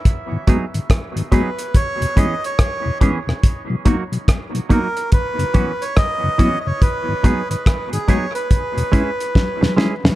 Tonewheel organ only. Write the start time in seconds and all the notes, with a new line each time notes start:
0.32 G#2 D#3
0.47 G#3 B3 F#4
0.74 G#2 D#3
1.16 G#2 D#3
1.31 G#3 B3 F#4
2.01 E2 B2
2.16 G#3 C#4 E4
2.86 E2 B2
3.01 G#3 C#4 E4
3.27 E2 B2
3.70 B2 F#3
3.85 A#3 B3 D#4
4.12 B2 F#3
4.54 B2 F#3
4.69 A#3 B3 D#4
5.39 F#2 C#3
5.54 F#3 B3 E4
6.24 F#2 C#3
6.39 F#3 B3 E4
6.67 F#2 C#3
7.09 G#2 D#3
7.23 G#3 B3 F#4
7.50 G#2 D#3
7.93 G#2 D#3
8.08 G#3 B3 F#4
8.77 E2 B2
8.92 G#3 C#4 E4
9.61 E2 B2
9.77 G#3 C#4 E4
10.04 E2 B2